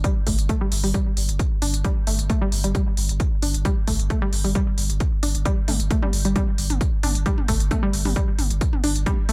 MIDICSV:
0, 0, Header, 1, 4, 480
1, 0, Start_track
1, 0, Tempo, 451128
1, 44, Time_signature, 4, 2, 24, 8
1, 9922, End_track
2, 0, Start_track
2, 0, Title_t, "Synth arpeggio sound"
2, 0, Program_c, 0, 84
2, 43, Note_on_c, 0, 55, 105
2, 92, Note_off_c, 0, 55, 0
2, 283, Note_on_c, 0, 57, 75
2, 364, Note_off_c, 0, 57, 0
2, 523, Note_on_c, 0, 57, 101
2, 643, Note_off_c, 0, 57, 0
2, 651, Note_on_c, 0, 55, 102
2, 694, Note_off_c, 0, 55, 0
2, 890, Note_on_c, 0, 55, 77
2, 962, Note_off_c, 0, 55, 0
2, 1002, Note_on_c, 0, 55, 104
2, 1051, Note_off_c, 0, 55, 0
2, 1723, Note_on_c, 0, 62, 78
2, 1772, Note_off_c, 0, 62, 0
2, 1963, Note_on_c, 0, 55, 106
2, 2012, Note_off_c, 0, 55, 0
2, 2204, Note_on_c, 0, 57, 78
2, 2285, Note_off_c, 0, 57, 0
2, 2443, Note_on_c, 0, 57, 98
2, 2563, Note_off_c, 0, 57, 0
2, 2570, Note_on_c, 0, 55, 101
2, 2613, Note_off_c, 0, 55, 0
2, 2810, Note_on_c, 0, 55, 80
2, 2882, Note_off_c, 0, 55, 0
2, 2924, Note_on_c, 0, 55, 100
2, 2972, Note_off_c, 0, 55, 0
2, 3643, Note_on_c, 0, 62, 79
2, 3692, Note_off_c, 0, 62, 0
2, 3883, Note_on_c, 0, 55, 107
2, 3932, Note_off_c, 0, 55, 0
2, 4124, Note_on_c, 0, 57, 80
2, 4205, Note_off_c, 0, 57, 0
2, 4363, Note_on_c, 0, 57, 102
2, 4483, Note_off_c, 0, 57, 0
2, 4490, Note_on_c, 0, 55, 105
2, 4534, Note_off_c, 0, 55, 0
2, 4729, Note_on_c, 0, 55, 78
2, 4802, Note_off_c, 0, 55, 0
2, 4843, Note_on_c, 0, 55, 106
2, 4892, Note_off_c, 0, 55, 0
2, 5563, Note_on_c, 0, 62, 77
2, 5612, Note_off_c, 0, 62, 0
2, 5803, Note_on_c, 0, 55, 107
2, 5852, Note_off_c, 0, 55, 0
2, 6043, Note_on_c, 0, 57, 77
2, 6124, Note_off_c, 0, 57, 0
2, 6283, Note_on_c, 0, 57, 99
2, 6403, Note_off_c, 0, 57, 0
2, 6411, Note_on_c, 0, 55, 104
2, 6454, Note_off_c, 0, 55, 0
2, 6651, Note_on_c, 0, 55, 76
2, 6723, Note_off_c, 0, 55, 0
2, 6763, Note_on_c, 0, 55, 107
2, 6812, Note_off_c, 0, 55, 0
2, 7484, Note_on_c, 0, 62, 78
2, 7532, Note_off_c, 0, 62, 0
2, 7723, Note_on_c, 0, 55, 108
2, 7772, Note_off_c, 0, 55, 0
2, 7964, Note_on_c, 0, 57, 81
2, 8045, Note_off_c, 0, 57, 0
2, 8202, Note_on_c, 0, 57, 101
2, 8323, Note_off_c, 0, 57, 0
2, 8330, Note_on_c, 0, 55, 105
2, 8373, Note_off_c, 0, 55, 0
2, 8569, Note_on_c, 0, 55, 82
2, 8642, Note_off_c, 0, 55, 0
2, 8682, Note_on_c, 0, 55, 105
2, 8731, Note_off_c, 0, 55, 0
2, 9402, Note_on_c, 0, 62, 81
2, 9451, Note_off_c, 0, 62, 0
2, 9643, Note_on_c, 0, 55, 108
2, 9692, Note_off_c, 0, 55, 0
2, 9882, Note_on_c, 0, 57, 76
2, 9922, Note_off_c, 0, 57, 0
2, 9922, End_track
3, 0, Start_track
3, 0, Title_t, "Sub bass"
3, 0, Program_c, 1, 38
3, 284, Note_on_c, 1, 31, 101
3, 404, Note_off_c, 1, 31, 0
3, 410, Note_on_c, 1, 31, 84
3, 521, Note_off_c, 1, 31, 0
3, 764, Note_on_c, 1, 31, 97
3, 885, Note_off_c, 1, 31, 0
3, 891, Note_on_c, 1, 31, 84
3, 1002, Note_off_c, 1, 31, 0
3, 1244, Note_on_c, 1, 31, 97
3, 1363, Note_off_c, 1, 31, 0
3, 1370, Note_on_c, 1, 31, 85
3, 1481, Note_off_c, 1, 31, 0
3, 1722, Note_on_c, 1, 31, 99
3, 1844, Note_off_c, 1, 31, 0
3, 1850, Note_on_c, 1, 31, 82
3, 1961, Note_off_c, 1, 31, 0
3, 2204, Note_on_c, 1, 31, 99
3, 2325, Note_off_c, 1, 31, 0
3, 2331, Note_on_c, 1, 31, 83
3, 2442, Note_off_c, 1, 31, 0
3, 2684, Note_on_c, 1, 31, 102
3, 2804, Note_off_c, 1, 31, 0
3, 2810, Note_on_c, 1, 31, 86
3, 2921, Note_off_c, 1, 31, 0
3, 3163, Note_on_c, 1, 31, 98
3, 3283, Note_off_c, 1, 31, 0
3, 3290, Note_on_c, 1, 31, 83
3, 3401, Note_off_c, 1, 31, 0
3, 3643, Note_on_c, 1, 31, 100
3, 3763, Note_off_c, 1, 31, 0
3, 3769, Note_on_c, 1, 31, 80
3, 3881, Note_off_c, 1, 31, 0
3, 4123, Note_on_c, 1, 31, 100
3, 4243, Note_off_c, 1, 31, 0
3, 4249, Note_on_c, 1, 31, 83
3, 4361, Note_off_c, 1, 31, 0
3, 4603, Note_on_c, 1, 31, 99
3, 4722, Note_off_c, 1, 31, 0
3, 4729, Note_on_c, 1, 31, 87
3, 4840, Note_off_c, 1, 31, 0
3, 5083, Note_on_c, 1, 31, 99
3, 5204, Note_off_c, 1, 31, 0
3, 5210, Note_on_c, 1, 31, 85
3, 5321, Note_off_c, 1, 31, 0
3, 5563, Note_on_c, 1, 31, 95
3, 5683, Note_off_c, 1, 31, 0
3, 5689, Note_on_c, 1, 31, 80
3, 5801, Note_off_c, 1, 31, 0
3, 6042, Note_on_c, 1, 31, 104
3, 6162, Note_off_c, 1, 31, 0
3, 6168, Note_on_c, 1, 31, 82
3, 6280, Note_off_c, 1, 31, 0
3, 6522, Note_on_c, 1, 31, 101
3, 6643, Note_off_c, 1, 31, 0
3, 6650, Note_on_c, 1, 31, 86
3, 6761, Note_off_c, 1, 31, 0
3, 7002, Note_on_c, 1, 31, 99
3, 7123, Note_off_c, 1, 31, 0
3, 7129, Note_on_c, 1, 31, 84
3, 7241, Note_off_c, 1, 31, 0
3, 7482, Note_on_c, 1, 31, 102
3, 7602, Note_off_c, 1, 31, 0
3, 7609, Note_on_c, 1, 31, 83
3, 7720, Note_off_c, 1, 31, 0
3, 7963, Note_on_c, 1, 31, 98
3, 8082, Note_off_c, 1, 31, 0
3, 8089, Note_on_c, 1, 31, 80
3, 8200, Note_off_c, 1, 31, 0
3, 8441, Note_on_c, 1, 31, 102
3, 8562, Note_off_c, 1, 31, 0
3, 8569, Note_on_c, 1, 31, 86
3, 8681, Note_off_c, 1, 31, 0
3, 8922, Note_on_c, 1, 31, 99
3, 9041, Note_off_c, 1, 31, 0
3, 9048, Note_on_c, 1, 31, 83
3, 9160, Note_off_c, 1, 31, 0
3, 9401, Note_on_c, 1, 31, 97
3, 9523, Note_off_c, 1, 31, 0
3, 9529, Note_on_c, 1, 31, 79
3, 9641, Note_off_c, 1, 31, 0
3, 9883, Note_on_c, 1, 31, 102
3, 9922, Note_off_c, 1, 31, 0
3, 9922, End_track
4, 0, Start_track
4, 0, Title_t, "Drums"
4, 44, Note_on_c, 9, 36, 120
4, 44, Note_on_c, 9, 42, 69
4, 150, Note_off_c, 9, 36, 0
4, 150, Note_off_c, 9, 42, 0
4, 283, Note_on_c, 9, 46, 109
4, 284, Note_on_c, 9, 36, 59
4, 390, Note_off_c, 9, 36, 0
4, 390, Note_off_c, 9, 46, 0
4, 411, Note_on_c, 9, 42, 66
4, 517, Note_off_c, 9, 42, 0
4, 523, Note_on_c, 9, 36, 123
4, 524, Note_on_c, 9, 42, 70
4, 630, Note_off_c, 9, 36, 0
4, 630, Note_off_c, 9, 42, 0
4, 763, Note_on_c, 9, 46, 110
4, 870, Note_off_c, 9, 46, 0
4, 890, Note_on_c, 9, 46, 65
4, 997, Note_off_c, 9, 46, 0
4, 1003, Note_on_c, 9, 36, 122
4, 1004, Note_on_c, 9, 42, 71
4, 1110, Note_off_c, 9, 36, 0
4, 1111, Note_off_c, 9, 42, 0
4, 1244, Note_on_c, 9, 46, 107
4, 1351, Note_off_c, 9, 46, 0
4, 1371, Note_on_c, 9, 42, 67
4, 1477, Note_off_c, 9, 42, 0
4, 1483, Note_on_c, 9, 36, 120
4, 1484, Note_on_c, 9, 42, 67
4, 1590, Note_off_c, 9, 36, 0
4, 1590, Note_off_c, 9, 42, 0
4, 1723, Note_on_c, 9, 46, 108
4, 1829, Note_off_c, 9, 46, 0
4, 1850, Note_on_c, 9, 42, 67
4, 1956, Note_off_c, 9, 42, 0
4, 1963, Note_on_c, 9, 36, 122
4, 1963, Note_on_c, 9, 42, 69
4, 2069, Note_off_c, 9, 36, 0
4, 2069, Note_off_c, 9, 42, 0
4, 2203, Note_on_c, 9, 46, 111
4, 2309, Note_off_c, 9, 46, 0
4, 2329, Note_on_c, 9, 42, 66
4, 2436, Note_off_c, 9, 42, 0
4, 2443, Note_on_c, 9, 36, 127
4, 2443, Note_on_c, 9, 42, 70
4, 2550, Note_off_c, 9, 36, 0
4, 2550, Note_off_c, 9, 42, 0
4, 2683, Note_on_c, 9, 46, 108
4, 2789, Note_off_c, 9, 46, 0
4, 2810, Note_on_c, 9, 42, 66
4, 2916, Note_off_c, 9, 42, 0
4, 2923, Note_on_c, 9, 36, 119
4, 2923, Note_on_c, 9, 42, 68
4, 3030, Note_off_c, 9, 36, 0
4, 3030, Note_off_c, 9, 42, 0
4, 3163, Note_on_c, 9, 46, 110
4, 3270, Note_off_c, 9, 46, 0
4, 3291, Note_on_c, 9, 42, 66
4, 3397, Note_off_c, 9, 42, 0
4, 3403, Note_on_c, 9, 36, 122
4, 3404, Note_on_c, 9, 42, 65
4, 3510, Note_off_c, 9, 36, 0
4, 3510, Note_off_c, 9, 42, 0
4, 3643, Note_on_c, 9, 46, 108
4, 3750, Note_off_c, 9, 46, 0
4, 3770, Note_on_c, 9, 42, 64
4, 3877, Note_off_c, 9, 42, 0
4, 3883, Note_on_c, 9, 36, 122
4, 3884, Note_on_c, 9, 42, 67
4, 3990, Note_off_c, 9, 36, 0
4, 3990, Note_off_c, 9, 42, 0
4, 4123, Note_on_c, 9, 36, 59
4, 4123, Note_on_c, 9, 46, 107
4, 4229, Note_off_c, 9, 46, 0
4, 4230, Note_off_c, 9, 36, 0
4, 4250, Note_on_c, 9, 42, 64
4, 4357, Note_off_c, 9, 42, 0
4, 4363, Note_on_c, 9, 36, 124
4, 4364, Note_on_c, 9, 42, 64
4, 4470, Note_off_c, 9, 36, 0
4, 4470, Note_off_c, 9, 42, 0
4, 4603, Note_on_c, 9, 46, 109
4, 4710, Note_off_c, 9, 46, 0
4, 4730, Note_on_c, 9, 46, 63
4, 4837, Note_off_c, 9, 46, 0
4, 4844, Note_on_c, 9, 36, 118
4, 4844, Note_on_c, 9, 42, 68
4, 4950, Note_off_c, 9, 36, 0
4, 4950, Note_off_c, 9, 42, 0
4, 5083, Note_on_c, 9, 46, 110
4, 5190, Note_off_c, 9, 46, 0
4, 5210, Note_on_c, 9, 42, 63
4, 5316, Note_off_c, 9, 42, 0
4, 5323, Note_on_c, 9, 42, 64
4, 5324, Note_on_c, 9, 36, 121
4, 5429, Note_off_c, 9, 42, 0
4, 5430, Note_off_c, 9, 36, 0
4, 5563, Note_on_c, 9, 46, 114
4, 5669, Note_off_c, 9, 46, 0
4, 5690, Note_on_c, 9, 42, 62
4, 5796, Note_off_c, 9, 42, 0
4, 5803, Note_on_c, 9, 42, 64
4, 5804, Note_on_c, 9, 36, 122
4, 5910, Note_off_c, 9, 36, 0
4, 5910, Note_off_c, 9, 42, 0
4, 6043, Note_on_c, 9, 46, 109
4, 6043, Note_on_c, 9, 47, 72
4, 6150, Note_off_c, 9, 46, 0
4, 6150, Note_off_c, 9, 47, 0
4, 6170, Note_on_c, 9, 42, 62
4, 6276, Note_off_c, 9, 42, 0
4, 6283, Note_on_c, 9, 42, 64
4, 6284, Note_on_c, 9, 36, 119
4, 6390, Note_off_c, 9, 36, 0
4, 6390, Note_off_c, 9, 42, 0
4, 6410, Note_on_c, 9, 47, 67
4, 6516, Note_off_c, 9, 47, 0
4, 6523, Note_on_c, 9, 46, 107
4, 6630, Note_off_c, 9, 46, 0
4, 6650, Note_on_c, 9, 42, 63
4, 6757, Note_off_c, 9, 42, 0
4, 6763, Note_on_c, 9, 42, 62
4, 6763, Note_on_c, 9, 47, 68
4, 6764, Note_on_c, 9, 36, 119
4, 6870, Note_off_c, 9, 36, 0
4, 6870, Note_off_c, 9, 42, 0
4, 6870, Note_off_c, 9, 47, 0
4, 7004, Note_on_c, 9, 46, 104
4, 7110, Note_off_c, 9, 46, 0
4, 7130, Note_on_c, 9, 42, 66
4, 7130, Note_on_c, 9, 47, 66
4, 7237, Note_off_c, 9, 42, 0
4, 7237, Note_off_c, 9, 47, 0
4, 7243, Note_on_c, 9, 36, 117
4, 7244, Note_on_c, 9, 42, 62
4, 7350, Note_off_c, 9, 36, 0
4, 7350, Note_off_c, 9, 42, 0
4, 7483, Note_on_c, 9, 46, 109
4, 7483, Note_on_c, 9, 47, 71
4, 7590, Note_off_c, 9, 46, 0
4, 7590, Note_off_c, 9, 47, 0
4, 7610, Note_on_c, 9, 42, 62
4, 7716, Note_off_c, 9, 42, 0
4, 7723, Note_on_c, 9, 36, 111
4, 7723, Note_on_c, 9, 42, 62
4, 7829, Note_off_c, 9, 42, 0
4, 7830, Note_off_c, 9, 36, 0
4, 7850, Note_on_c, 9, 47, 67
4, 7956, Note_off_c, 9, 47, 0
4, 7963, Note_on_c, 9, 36, 59
4, 7963, Note_on_c, 9, 46, 102
4, 8069, Note_off_c, 9, 46, 0
4, 8070, Note_off_c, 9, 36, 0
4, 8089, Note_on_c, 9, 42, 60
4, 8196, Note_off_c, 9, 42, 0
4, 8203, Note_on_c, 9, 36, 113
4, 8203, Note_on_c, 9, 42, 62
4, 8203, Note_on_c, 9, 47, 69
4, 8309, Note_off_c, 9, 42, 0
4, 8309, Note_off_c, 9, 47, 0
4, 8310, Note_off_c, 9, 36, 0
4, 8442, Note_on_c, 9, 46, 104
4, 8548, Note_off_c, 9, 46, 0
4, 8568, Note_on_c, 9, 46, 62
4, 8568, Note_on_c, 9, 47, 72
4, 8675, Note_off_c, 9, 46, 0
4, 8675, Note_off_c, 9, 47, 0
4, 8682, Note_on_c, 9, 42, 63
4, 8683, Note_on_c, 9, 36, 115
4, 8789, Note_off_c, 9, 36, 0
4, 8789, Note_off_c, 9, 42, 0
4, 8923, Note_on_c, 9, 46, 100
4, 8923, Note_on_c, 9, 47, 67
4, 9029, Note_off_c, 9, 46, 0
4, 9029, Note_off_c, 9, 47, 0
4, 9049, Note_on_c, 9, 42, 62
4, 9155, Note_off_c, 9, 42, 0
4, 9162, Note_on_c, 9, 42, 62
4, 9163, Note_on_c, 9, 36, 111
4, 9268, Note_off_c, 9, 42, 0
4, 9269, Note_off_c, 9, 36, 0
4, 9288, Note_on_c, 9, 47, 70
4, 9394, Note_off_c, 9, 47, 0
4, 9402, Note_on_c, 9, 46, 105
4, 9508, Note_off_c, 9, 46, 0
4, 9529, Note_on_c, 9, 42, 61
4, 9636, Note_off_c, 9, 42, 0
4, 9643, Note_on_c, 9, 36, 114
4, 9643, Note_on_c, 9, 42, 65
4, 9643, Note_on_c, 9, 47, 69
4, 9749, Note_off_c, 9, 36, 0
4, 9749, Note_off_c, 9, 42, 0
4, 9749, Note_off_c, 9, 47, 0
4, 9882, Note_on_c, 9, 46, 102
4, 9922, Note_off_c, 9, 46, 0
4, 9922, End_track
0, 0, End_of_file